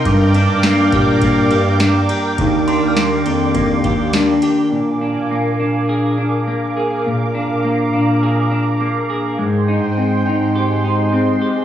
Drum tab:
RD |xxxxxxxx|xxxxxxxx|--------|--------|
TB |--x---x-|--x---x-|--------|--------|
SD |--o---o-|--o---o-|--------|--------|
BD |o--oo---|o---oo--|--------|--------|

RD |--------|
TB |--------|
SD |--------|
BD |--------|